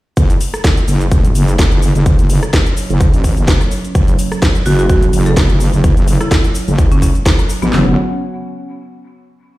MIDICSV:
0, 0, Header, 1, 5, 480
1, 0, Start_track
1, 0, Tempo, 472441
1, 174, Time_signature, 4, 2, 24, 8
1, 9733, End_track
2, 0, Start_track
2, 0, Title_t, "Marimba"
2, 0, Program_c, 0, 12
2, 4733, Note_on_c, 0, 66, 95
2, 4839, Note_off_c, 0, 66, 0
2, 4866, Note_on_c, 0, 66, 96
2, 4935, Note_off_c, 0, 66, 0
2, 4974, Note_on_c, 0, 66, 82
2, 5058, Note_off_c, 0, 66, 0
2, 5346, Note_on_c, 0, 69, 88
2, 5415, Note_off_c, 0, 69, 0
2, 5455, Note_on_c, 0, 69, 78
2, 5539, Note_off_c, 0, 69, 0
2, 6305, Note_on_c, 0, 64, 96
2, 6469, Note_off_c, 0, 64, 0
2, 7026, Note_on_c, 0, 61, 92
2, 7095, Note_off_c, 0, 61, 0
2, 7133, Note_on_c, 0, 61, 77
2, 7218, Note_off_c, 0, 61, 0
2, 7745, Note_on_c, 0, 59, 95
2, 7853, Note_off_c, 0, 59, 0
2, 9733, End_track
3, 0, Start_track
3, 0, Title_t, "Analog synth pad"
3, 0, Program_c, 1, 89
3, 171, Note_on_c, 1, 54, 80
3, 172, Note_on_c, 1, 61, 78
3, 172, Note_on_c, 1, 73, 91
3, 7812, Note_off_c, 1, 54, 0
3, 7812, Note_off_c, 1, 61, 0
3, 7812, Note_off_c, 1, 73, 0
3, 9733, End_track
4, 0, Start_track
4, 0, Title_t, "Wobble bass"
4, 0, Program_c, 2, 39
4, 174, Note_on_c, 2, 30, 103
4, 396, Note_off_c, 2, 30, 0
4, 894, Note_on_c, 2, 30, 101
4, 1357, Note_off_c, 2, 30, 0
4, 1375, Note_on_c, 2, 30, 92
4, 1726, Note_off_c, 2, 30, 0
4, 1747, Note_on_c, 2, 30, 103
4, 1965, Note_off_c, 2, 30, 0
4, 1986, Note_on_c, 2, 30, 95
4, 2205, Note_off_c, 2, 30, 0
4, 2227, Note_on_c, 2, 30, 102
4, 2446, Note_off_c, 2, 30, 0
4, 2948, Note_on_c, 2, 30, 106
4, 3166, Note_off_c, 2, 30, 0
4, 3187, Note_on_c, 2, 33, 91
4, 3405, Note_off_c, 2, 33, 0
4, 3426, Note_on_c, 2, 30, 100
4, 3645, Note_off_c, 2, 30, 0
4, 4014, Note_on_c, 2, 30, 96
4, 4237, Note_off_c, 2, 30, 0
4, 4733, Note_on_c, 2, 30, 96
4, 5196, Note_off_c, 2, 30, 0
4, 5213, Note_on_c, 2, 30, 96
4, 5565, Note_off_c, 2, 30, 0
4, 5586, Note_on_c, 2, 30, 99
4, 5805, Note_off_c, 2, 30, 0
4, 5826, Note_on_c, 2, 30, 96
4, 6045, Note_off_c, 2, 30, 0
4, 6066, Note_on_c, 2, 30, 98
4, 6285, Note_off_c, 2, 30, 0
4, 6786, Note_on_c, 2, 30, 101
4, 7245, Note_off_c, 2, 30, 0
4, 7747, Note_on_c, 2, 33, 98
4, 7837, Note_off_c, 2, 33, 0
4, 7854, Note_on_c, 2, 30, 97
4, 8077, Note_off_c, 2, 30, 0
4, 9733, End_track
5, 0, Start_track
5, 0, Title_t, "Drums"
5, 173, Note_on_c, 9, 36, 118
5, 173, Note_on_c, 9, 42, 80
5, 174, Note_on_c, 9, 82, 46
5, 275, Note_off_c, 9, 36, 0
5, 275, Note_off_c, 9, 42, 0
5, 276, Note_off_c, 9, 82, 0
5, 306, Note_on_c, 9, 42, 55
5, 307, Note_on_c, 9, 82, 32
5, 407, Note_off_c, 9, 42, 0
5, 408, Note_off_c, 9, 82, 0
5, 413, Note_on_c, 9, 46, 115
5, 414, Note_on_c, 9, 82, 83
5, 515, Note_off_c, 9, 46, 0
5, 516, Note_off_c, 9, 82, 0
5, 546, Note_on_c, 9, 37, 82
5, 547, Note_on_c, 9, 82, 36
5, 647, Note_off_c, 9, 37, 0
5, 648, Note_off_c, 9, 82, 0
5, 653, Note_on_c, 9, 36, 119
5, 654, Note_on_c, 9, 42, 85
5, 655, Note_on_c, 9, 82, 46
5, 657, Note_on_c, 9, 38, 117
5, 755, Note_off_c, 9, 36, 0
5, 755, Note_off_c, 9, 42, 0
5, 756, Note_off_c, 9, 82, 0
5, 759, Note_off_c, 9, 38, 0
5, 786, Note_on_c, 9, 42, 54
5, 787, Note_on_c, 9, 82, 30
5, 887, Note_off_c, 9, 42, 0
5, 888, Note_off_c, 9, 82, 0
5, 893, Note_on_c, 9, 46, 98
5, 894, Note_on_c, 9, 82, 84
5, 995, Note_off_c, 9, 46, 0
5, 996, Note_off_c, 9, 82, 0
5, 1025, Note_on_c, 9, 42, 38
5, 1026, Note_on_c, 9, 82, 34
5, 1127, Note_off_c, 9, 42, 0
5, 1128, Note_off_c, 9, 82, 0
5, 1133, Note_on_c, 9, 36, 117
5, 1133, Note_on_c, 9, 42, 81
5, 1134, Note_on_c, 9, 82, 44
5, 1235, Note_off_c, 9, 36, 0
5, 1235, Note_off_c, 9, 42, 0
5, 1236, Note_off_c, 9, 82, 0
5, 1266, Note_on_c, 9, 42, 57
5, 1267, Note_on_c, 9, 82, 31
5, 1367, Note_off_c, 9, 42, 0
5, 1368, Note_off_c, 9, 82, 0
5, 1374, Note_on_c, 9, 46, 106
5, 1374, Note_on_c, 9, 82, 82
5, 1475, Note_off_c, 9, 46, 0
5, 1476, Note_off_c, 9, 82, 0
5, 1506, Note_on_c, 9, 42, 41
5, 1507, Note_on_c, 9, 82, 37
5, 1607, Note_off_c, 9, 42, 0
5, 1608, Note_off_c, 9, 82, 0
5, 1613, Note_on_c, 9, 36, 127
5, 1614, Note_on_c, 9, 42, 89
5, 1615, Note_on_c, 9, 82, 47
5, 1617, Note_on_c, 9, 38, 127
5, 1715, Note_off_c, 9, 36, 0
5, 1716, Note_off_c, 9, 42, 0
5, 1717, Note_off_c, 9, 82, 0
5, 1719, Note_off_c, 9, 38, 0
5, 1746, Note_on_c, 9, 42, 54
5, 1847, Note_off_c, 9, 42, 0
5, 1853, Note_on_c, 9, 46, 96
5, 1854, Note_on_c, 9, 82, 79
5, 1954, Note_off_c, 9, 46, 0
5, 1955, Note_off_c, 9, 82, 0
5, 1985, Note_on_c, 9, 42, 38
5, 1986, Note_on_c, 9, 82, 35
5, 2087, Note_off_c, 9, 42, 0
5, 2088, Note_off_c, 9, 82, 0
5, 2093, Note_on_c, 9, 42, 80
5, 2094, Note_on_c, 9, 36, 121
5, 2094, Note_on_c, 9, 82, 44
5, 2194, Note_off_c, 9, 42, 0
5, 2195, Note_off_c, 9, 36, 0
5, 2195, Note_off_c, 9, 82, 0
5, 2225, Note_on_c, 9, 42, 55
5, 2226, Note_on_c, 9, 82, 31
5, 2327, Note_off_c, 9, 42, 0
5, 2328, Note_off_c, 9, 82, 0
5, 2333, Note_on_c, 9, 46, 114
5, 2334, Note_on_c, 9, 82, 78
5, 2435, Note_off_c, 9, 46, 0
5, 2435, Note_off_c, 9, 82, 0
5, 2466, Note_on_c, 9, 37, 79
5, 2466, Note_on_c, 9, 42, 42
5, 2467, Note_on_c, 9, 82, 35
5, 2568, Note_off_c, 9, 37, 0
5, 2568, Note_off_c, 9, 42, 0
5, 2569, Note_off_c, 9, 82, 0
5, 2574, Note_on_c, 9, 36, 121
5, 2574, Note_on_c, 9, 42, 81
5, 2575, Note_on_c, 9, 82, 43
5, 2577, Note_on_c, 9, 38, 127
5, 2675, Note_off_c, 9, 42, 0
5, 2676, Note_off_c, 9, 36, 0
5, 2676, Note_off_c, 9, 82, 0
5, 2679, Note_off_c, 9, 38, 0
5, 2706, Note_on_c, 9, 42, 54
5, 2707, Note_on_c, 9, 82, 31
5, 2808, Note_off_c, 9, 42, 0
5, 2809, Note_off_c, 9, 82, 0
5, 2814, Note_on_c, 9, 46, 101
5, 2815, Note_on_c, 9, 82, 79
5, 2915, Note_off_c, 9, 46, 0
5, 2916, Note_off_c, 9, 82, 0
5, 2947, Note_on_c, 9, 42, 38
5, 2948, Note_on_c, 9, 82, 32
5, 3048, Note_off_c, 9, 42, 0
5, 3049, Note_off_c, 9, 82, 0
5, 3054, Note_on_c, 9, 36, 124
5, 3054, Note_on_c, 9, 42, 82
5, 3055, Note_on_c, 9, 82, 43
5, 3156, Note_off_c, 9, 36, 0
5, 3156, Note_off_c, 9, 42, 0
5, 3157, Note_off_c, 9, 82, 0
5, 3186, Note_on_c, 9, 42, 57
5, 3187, Note_on_c, 9, 82, 31
5, 3288, Note_off_c, 9, 42, 0
5, 3289, Note_off_c, 9, 82, 0
5, 3294, Note_on_c, 9, 36, 66
5, 3294, Note_on_c, 9, 46, 110
5, 3295, Note_on_c, 9, 82, 74
5, 3395, Note_off_c, 9, 46, 0
5, 3396, Note_off_c, 9, 36, 0
5, 3396, Note_off_c, 9, 82, 0
5, 3426, Note_on_c, 9, 42, 39
5, 3427, Note_on_c, 9, 82, 35
5, 3528, Note_off_c, 9, 42, 0
5, 3529, Note_off_c, 9, 82, 0
5, 3534, Note_on_c, 9, 36, 127
5, 3534, Note_on_c, 9, 42, 85
5, 3535, Note_on_c, 9, 82, 47
5, 3537, Note_on_c, 9, 38, 127
5, 3635, Note_off_c, 9, 42, 0
5, 3636, Note_off_c, 9, 36, 0
5, 3636, Note_off_c, 9, 82, 0
5, 3639, Note_off_c, 9, 38, 0
5, 3667, Note_on_c, 9, 37, 58
5, 3667, Note_on_c, 9, 42, 54
5, 3668, Note_on_c, 9, 82, 30
5, 3768, Note_off_c, 9, 37, 0
5, 3768, Note_off_c, 9, 42, 0
5, 3769, Note_off_c, 9, 82, 0
5, 3774, Note_on_c, 9, 46, 98
5, 3775, Note_on_c, 9, 82, 77
5, 3876, Note_off_c, 9, 46, 0
5, 3877, Note_off_c, 9, 82, 0
5, 3907, Note_on_c, 9, 42, 37
5, 3908, Note_on_c, 9, 82, 35
5, 4008, Note_off_c, 9, 42, 0
5, 4009, Note_off_c, 9, 82, 0
5, 4014, Note_on_c, 9, 36, 124
5, 4014, Note_on_c, 9, 42, 79
5, 4015, Note_on_c, 9, 82, 46
5, 4116, Note_off_c, 9, 36, 0
5, 4116, Note_off_c, 9, 42, 0
5, 4117, Note_off_c, 9, 82, 0
5, 4146, Note_on_c, 9, 42, 53
5, 4147, Note_on_c, 9, 82, 29
5, 4247, Note_off_c, 9, 42, 0
5, 4249, Note_off_c, 9, 82, 0
5, 4254, Note_on_c, 9, 46, 120
5, 4255, Note_on_c, 9, 82, 79
5, 4356, Note_off_c, 9, 46, 0
5, 4357, Note_off_c, 9, 82, 0
5, 4386, Note_on_c, 9, 37, 83
5, 4387, Note_on_c, 9, 82, 32
5, 4488, Note_off_c, 9, 37, 0
5, 4489, Note_off_c, 9, 82, 0
5, 4493, Note_on_c, 9, 42, 76
5, 4494, Note_on_c, 9, 36, 126
5, 4494, Note_on_c, 9, 82, 43
5, 4497, Note_on_c, 9, 38, 125
5, 4595, Note_off_c, 9, 36, 0
5, 4595, Note_off_c, 9, 42, 0
5, 4596, Note_off_c, 9, 82, 0
5, 4599, Note_off_c, 9, 38, 0
5, 4626, Note_on_c, 9, 42, 54
5, 4627, Note_on_c, 9, 82, 31
5, 4727, Note_off_c, 9, 42, 0
5, 4728, Note_off_c, 9, 82, 0
5, 4733, Note_on_c, 9, 46, 102
5, 4734, Note_on_c, 9, 82, 78
5, 4835, Note_off_c, 9, 46, 0
5, 4836, Note_off_c, 9, 82, 0
5, 4866, Note_on_c, 9, 42, 39
5, 4867, Note_on_c, 9, 82, 34
5, 4967, Note_off_c, 9, 42, 0
5, 4968, Note_off_c, 9, 82, 0
5, 4973, Note_on_c, 9, 36, 127
5, 4974, Note_on_c, 9, 42, 75
5, 4975, Note_on_c, 9, 82, 44
5, 5075, Note_off_c, 9, 36, 0
5, 5075, Note_off_c, 9, 42, 0
5, 5076, Note_off_c, 9, 82, 0
5, 5105, Note_on_c, 9, 42, 54
5, 5106, Note_on_c, 9, 82, 31
5, 5207, Note_off_c, 9, 42, 0
5, 5208, Note_off_c, 9, 82, 0
5, 5213, Note_on_c, 9, 46, 113
5, 5214, Note_on_c, 9, 82, 74
5, 5315, Note_off_c, 9, 46, 0
5, 5316, Note_off_c, 9, 82, 0
5, 5346, Note_on_c, 9, 42, 39
5, 5347, Note_on_c, 9, 82, 34
5, 5447, Note_off_c, 9, 42, 0
5, 5448, Note_off_c, 9, 82, 0
5, 5453, Note_on_c, 9, 36, 127
5, 5453, Note_on_c, 9, 42, 83
5, 5454, Note_on_c, 9, 82, 46
5, 5457, Note_on_c, 9, 38, 127
5, 5555, Note_off_c, 9, 36, 0
5, 5555, Note_off_c, 9, 42, 0
5, 5556, Note_off_c, 9, 82, 0
5, 5558, Note_off_c, 9, 38, 0
5, 5585, Note_on_c, 9, 42, 55
5, 5686, Note_off_c, 9, 42, 0
5, 5693, Note_on_c, 9, 46, 95
5, 5694, Note_on_c, 9, 82, 76
5, 5795, Note_off_c, 9, 46, 0
5, 5796, Note_off_c, 9, 82, 0
5, 5826, Note_on_c, 9, 42, 37
5, 5827, Note_on_c, 9, 82, 34
5, 5927, Note_off_c, 9, 42, 0
5, 5928, Note_off_c, 9, 82, 0
5, 5933, Note_on_c, 9, 36, 126
5, 5933, Note_on_c, 9, 42, 74
5, 5934, Note_on_c, 9, 82, 46
5, 6034, Note_off_c, 9, 42, 0
5, 6035, Note_off_c, 9, 36, 0
5, 6035, Note_off_c, 9, 82, 0
5, 6066, Note_on_c, 9, 42, 51
5, 6067, Note_on_c, 9, 82, 30
5, 6168, Note_off_c, 9, 42, 0
5, 6169, Note_off_c, 9, 82, 0
5, 6173, Note_on_c, 9, 46, 123
5, 6174, Note_on_c, 9, 82, 79
5, 6275, Note_off_c, 9, 46, 0
5, 6276, Note_off_c, 9, 82, 0
5, 6306, Note_on_c, 9, 37, 83
5, 6306, Note_on_c, 9, 42, 38
5, 6307, Note_on_c, 9, 82, 36
5, 6408, Note_off_c, 9, 37, 0
5, 6408, Note_off_c, 9, 42, 0
5, 6409, Note_off_c, 9, 82, 0
5, 6414, Note_on_c, 9, 36, 120
5, 6414, Note_on_c, 9, 42, 77
5, 6415, Note_on_c, 9, 82, 42
5, 6418, Note_on_c, 9, 38, 118
5, 6515, Note_off_c, 9, 36, 0
5, 6516, Note_off_c, 9, 42, 0
5, 6517, Note_off_c, 9, 82, 0
5, 6519, Note_off_c, 9, 38, 0
5, 6546, Note_on_c, 9, 42, 52
5, 6547, Note_on_c, 9, 82, 31
5, 6648, Note_off_c, 9, 42, 0
5, 6649, Note_off_c, 9, 82, 0
5, 6654, Note_on_c, 9, 46, 103
5, 6655, Note_on_c, 9, 82, 80
5, 6755, Note_off_c, 9, 46, 0
5, 6756, Note_off_c, 9, 82, 0
5, 6786, Note_on_c, 9, 42, 36
5, 6787, Note_on_c, 9, 82, 34
5, 6888, Note_off_c, 9, 42, 0
5, 6889, Note_off_c, 9, 82, 0
5, 6894, Note_on_c, 9, 36, 125
5, 6895, Note_on_c, 9, 42, 74
5, 6896, Note_on_c, 9, 82, 45
5, 6995, Note_off_c, 9, 36, 0
5, 6996, Note_off_c, 9, 42, 0
5, 6997, Note_off_c, 9, 82, 0
5, 7026, Note_on_c, 9, 42, 53
5, 7027, Note_on_c, 9, 82, 32
5, 7128, Note_off_c, 9, 42, 0
5, 7129, Note_off_c, 9, 82, 0
5, 7134, Note_on_c, 9, 36, 68
5, 7134, Note_on_c, 9, 46, 111
5, 7135, Note_on_c, 9, 82, 76
5, 7235, Note_off_c, 9, 36, 0
5, 7236, Note_off_c, 9, 46, 0
5, 7236, Note_off_c, 9, 82, 0
5, 7267, Note_on_c, 9, 42, 36
5, 7268, Note_on_c, 9, 82, 35
5, 7368, Note_off_c, 9, 42, 0
5, 7369, Note_off_c, 9, 82, 0
5, 7374, Note_on_c, 9, 36, 126
5, 7375, Note_on_c, 9, 42, 81
5, 7376, Note_on_c, 9, 82, 44
5, 7378, Note_on_c, 9, 38, 127
5, 7475, Note_off_c, 9, 36, 0
5, 7477, Note_off_c, 9, 42, 0
5, 7478, Note_off_c, 9, 82, 0
5, 7480, Note_off_c, 9, 38, 0
5, 7508, Note_on_c, 9, 37, 63
5, 7508, Note_on_c, 9, 42, 52
5, 7509, Note_on_c, 9, 82, 31
5, 7609, Note_off_c, 9, 37, 0
5, 7609, Note_off_c, 9, 42, 0
5, 7610, Note_off_c, 9, 82, 0
5, 7615, Note_on_c, 9, 46, 101
5, 7616, Note_on_c, 9, 82, 82
5, 7716, Note_off_c, 9, 46, 0
5, 7717, Note_off_c, 9, 82, 0
5, 7747, Note_on_c, 9, 42, 35
5, 7748, Note_on_c, 9, 82, 34
5, 7849, Note_off_c, 9, 42, 0
5, 7850, Note_off_c, 9, 82, 0
5, 7853, Note_on_c, 9, 38, 110
5, 7853, Note_on_c, 9, 39, 89
5, 7955, Note_off_c, 9, 38, 0
5, 7955, Note_off_c, 9, 39, 0
5, 9733, End_track
0, 0, End_of_file